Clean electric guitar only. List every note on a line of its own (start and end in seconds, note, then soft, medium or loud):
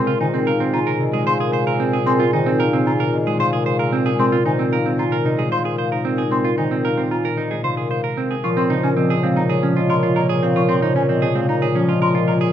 0.00 0.11 C4 medium
0.07 0.20 F4 medium
0.21 0.38 D#4 medium
0.34 0.51 C4 medium
0.47 0.64 A#4 medium
0.60 0.78 C4 medium
0.74 0.91 F4 medium
0.87 1.04 A#4 medium
1.13 1.26 G#4 medium
1.27 1.40 C5 medium
1.40 1.53 G#4 medium
1.53 1.67 C5 medium
1.67 1.84 A#4 medium
1.80 1.97 C4 medium
1.93 2.10 G#4 medium
2.06 2.24 C4 medium
2.20 2.33 F4 medium
2.33 2.50 D#4 medium
2.46 2.63 C4 medium
2.60 2.77 A#4 medium
2.73 2.90 C4 medium
2.87 3.04 F4 medium
3.00 3.17 A#4 medium
3.27 3.40 G#4 medium
3.40 3.52 C5 medium
3.53 3.66 G#4 medium
3.66 3.79 C5 medium
3.79 3.96 A#4 medium
3.93 4.10 C4 medium
4.06 4.23 G#4 medium
4.19 4.36 C4 medium
4.32 4.45 F4 medium
4.46 4.63 D#4 medium
4.59 4.76 C4 medium
4.73 4.89 A#4 medium
4.86 5.03 C4 medium
4.99 5.16 F4 medium
5.12 5.29 A#4 medium
5.26 5.42 D#4 medium
5.39 5.52 G#4 medium
5.52 5.65 C5 medium
5.65 5.78 G#4 medium
5.78 5.92 C5 medium
5.92 6.09 A#4 medium
6.05 6.22 C4 medium
6.18 6.35 G#4 medium
6.31 6.49 C4 medium
6.45 6.57 F4 medium
6.58 6.75 D#4 medium
6.71 6.88 C4 medium
6.85 7.02 A#4 medium
6.98 7.15 C4 medium
7.11 7.28 F4 medium
7.25 7.42 A#4 medium
7.38 7.55 D#4 medium
7.51 7.64 G#4 medium
7.64 7.77 C5 medium
7.77 7.90 G#4 medium
7.91 8.03 C5 medium
8.04 8.21 A#4 medium
8.17 8.34 C4 medium
8.31 8.48 G#4 medium
8.44 8.61 F4 medium
8.57 8.74 C4 medium
8.70 8.87 D#4 medium
8.83 8.96 C#4 medium
8.97 9.14 C4 medium
9.10 9.27 G#4 medium
9.23 9.40 C4 medium
9.36 9.54 D#4 medium
9.49 9.67 G#4 medium
9.63 9.80 C#4 medium
9.77 9.94 F4 medium
9.90 10.07 A#4 medium
10.03 10.20 F4 medium
10.16 10.29 A#4 medium
10.29 10.47 G#4 medium
10.43 10.60 C4 medium
10.56 10.73 F4 medium
10.69 10.82 C4 medium
10.82 10.95 D#4 medium
10.96 11.09 C#4 medium
11.09 11.26 C4 medium
11.22 11.39 G#4 medium
11.35 11.49 C4 medium
11.49 11.66 D#4 medium
11.62 11.79 G#4 medium
11.76 11.93 C#4 medium
11.89 12.01 F4 medium
12.02 12.19 A#4 medium
12.15 12.32 F4 medium
12.28 12.40 A#4 medium
12.41 12.53 G#4 medium